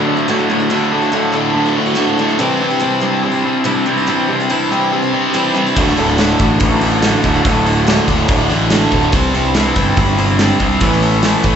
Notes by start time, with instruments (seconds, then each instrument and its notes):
Already playing: steel-string acoustic guitar D4 F#4
0.00 steel-string acoustic guitar A3
0.07 overdriven electric guitar D2 A2 D3
0.17 steel-string acoustic guitar A3 D4 F#4
0.28 overdriven electric guitar D2 A2 D3, steel-string acoustic guitar D3 A3 D4 F#4
0.38 steel-string acoustic guitar A3 D4 F#4
0.49 overdriven electric guitar D2 A2 D3, steel-string acoustic guitar D3 A3 D4 F#4
0.60 steel-string acoustic guitar A3 D4 F#4
0.70 overdriven electric guitar D2 A2 D3, steel-string acoustic guitar D3 A3 D4 F#4
0.92 overdriven electric guitar D2 A2 D3
1.02 steel-string acoustic guitar A3 D4 F#4
1.12 overdriven electric guitar D2 A2 D3, steel-string acoustic guitar D3 A3 D4 F#4
1.32 overdriven electric guitar D2 A2 D3, steel-string acoustic guitar D3 A3 D4 F#4
1.55 overdriven electric guitar D2 A2 D3
1.66 steel-string acoustic guitar A3 D4 F#4
1.77 overdriven electric guitar D2 A2 D3
1.86 steel-string acoustic guitar A3 D4 F#4
1.95 overdriven electric guitar D2 A2, steel-string acoustic guitar D3 A3 D4 F#4
1.99 overdriven electric guitar D3
2.08 steel-string acoustic guitar A3 D4
2.18 overdriven electric guitar D2 A2 D3, steel-string acoustic guitar D3 A3 D4 F#4
2.29 steel-string acoustic guitar A3 D4 F#4
2.39 steel-string acoustic guitar C3 E3 G3 D4 E4, overdriven electric guitar C3 G3 C4
2.61 overdriven electric guitar C3 G3 C4
2.70 steel-string acoustic guitar G3 D4 E4
2.79 steel-string acoustic guitar C3 E3 G3 D4 E4, overdriven electric guitar C3 G3
2.84 overdriven electric guitar C4
3.00 overdriven electric guitar C3 G3 C4, steel-string acoustic guitar E3 G3 D4 E4
3.24 overdriven electric guitar C3 G3 C4
3.31 steel-string acoustic guitar G3 D4 E4
3.45 overdriven electric guitar C3 G3 C4
3.64 steel-string acoustic guitar C3 E3 G3 D4 E4, overdriven electric guitar C3 G3 C4
3.86 overdriven electric guitar C3 G3 C4, steel-string acoustic guitar E3 G3 D4 E4
3.97 steel-string acoustic guitar G3 D4 E4
4.07 steel-string acoustic guitar C3 E3 G3 D4 E4, overdriven electric guitar C3 G3 C4
4.28 overdriven electric guitar C3 G3 C4
4.40 steel-string acoustic guitar G3 D4 E4
4.50 steel-string acoustic guitar C3 E3 G3 D4 E4, overdriven electric guitar C3 G3 C4
4.71 overdriven electric guitar C3 G3 C4, steel-string acoustic guitar E3 G3 D4 E4
4.92 overdriven electric guitar C3 G3 C4
5.02 steel-string acoustic guitar G3 D4 E4
5.13 overdriven electric guitar C3 G3 C4
5.34 steel-string acoustic guitar C3 E3 G3 D4 E4, overdriven electric guitar C3 G3 C4
5.54 overdriven electric guitar C3 G3 C4, steel-string acoustic guitar E3 G3 D4 E4
5.66 steel-string acoustic guitar G3 D4 E4
5.76 fingered electric bass D1, overdriven electric guitar D2 A2 D3, steel-string acoustic guitar D3 A3 D4 F#4, kick, open hi-hat
5.87 snare
5.97 fingered electric bass D1, overdriven electric guitar D2 A2 D3, open hi-hat
6.09 steel-string acoustic guitar A3 D4 F#4
6.18 overdriven electric guitar D2 A2 D3, steel-string acoustic guitar D3 A3 D4 F#4, snare, open hi-hat
6.39 fingered electric bass A1, overdriven electric guitar D2 A2 D3, steel-string acoustic guitar D3 A3 D4 F#4, kick, open hi-hat
6.60 fingered electric bass A1, overdriven electric guitar D2 A2 D3, kick, open hi-hat
6.71 steel-string acoustic guitar A3 D4 F#4
6.81 overdriven electric guitar D2 A2 D3, open hi-hat
7.02 overdriven electric guitar D2 A2 D3, steel-string acoustic guitar D3 A3 D4 F#4, snare, open hi-hat
7.13 steel-string acoustic guitar A3 D4 F#4
7.23 fingered electric bass D1, overdriven electric guitar D2 A2 D3, steel-string acoustic guitar D3 A3 D4 F#4, kick, open hi-hat
7.34 steel-string acoustic guitar A3 D4 F#4
7.45 fingered electric bass D1, overdriven electric guitar D2 A2 D3, steel-string acoustic guitar D3 A3 D4 F#4, kick, open hi-hat
7.66 overdriven electric guitar D2 A2 D3, open hi-hat
7.76 steel-string acoustic guitar A3 D4 F#4
7.87 overdriven electric guitar D2 A2 D3, steel-string acoustic guitar D3 A3 D4 F#4, snare, open hi-hat
8.08 fingered electric bass D1, overdriven electric guitar D2 A2 D3, steel-string acoustic guitar D3 A3 D4 F#4, kick, open hi-hat
8.28 fingered electric bass D1, overdriven electric guitar D2 A2 D3, kick, open hi-hat
8.39 steel-string acoustic guitar A3 D4 F#4
8.49 fingered electric bass A1, overdriven electric guitar D2 A2 D3, open hi-hat
8.70 overdriven electric guitar D2 A2 D3, steel-string acoustic guitar D3 A3 D4 F#4, snare, open hi-hat
8.91 fingered electric bass D1, overdriven electric guitar D2 A2 D3, steel-string acoustic guitar D3 A3 D4 F#4, kick, open hi-hat
9.01 steel-string acoustic guitar A3 D4 F#4
9.12 fingered electric bass C2, overdriven electric guitar C3 G3 C4, steel-string acoustic guitar C3 E3 G3 D4 E4, kick, open hi-hat
9.34 fingered electric bass C2, overdriven electric guitar C3 G3 C4, open hi-hat
9.45 steel-string acoustic guitar G3 D4 E4
9.54 steel-string acoustic guitar C3 E3 G3 D4 E4, overdriven electric guitar C3 G3 C4, snare, open hi-hat
9.75 fingered electric bass G1, overdriven electric guitar C3 G3 C4, steel-string acoustic guitar E3 G3 D4 E4, kick, open hi-hat
9.97 fingered electric bass G1, overdriven electric guitar C3 G3 C4, kick, open hi-hat
10.08 steel-string acoustic guitar G3 D4 E4
10.18 overdriven electric guitar C3 G3 C4, open hi-hat
10.28 steel-string acoustic guitar G3 D4 E4
10.39 overdriven electric guitar C3 G3 C4, steel-string acoustic guitar C3 E3 G3 D4 E4, snare, open hi-hat
10.50 steel-string acoustic guitar G3 D4 E4
10.59 fingered electric bass C2, overdriven electric guitar C3 G3 C4, steel-string acoustic guitar E3 G3 D4 E4, kick, open hi-hat
10.71 steel-string acoustic guitar G3 D4 E4
10.80 fingered electric bass A1, steel-string acoustic guitar A2 E3 B3 C#4 E4, overdriven electric guitar A2 E3 A3, kick, open hi-hat
10.92 snare
11.02 overdriven electric guitar A2 E3 A3, open hi-hat
11.12 steel-string acoustic guitar B3 C#4 E4
11.22 overdriven electric guitar A2 E3 A3, steel-string acoustic guitar A2 E3 B3 C#4 E4, snare, open hi-hat
11.43 fingered electric bass A1, overdriven electric guitar A2 E3 A3, steel-string acoustic guitar E3 B3 C#4 E4, kick, open hi-hat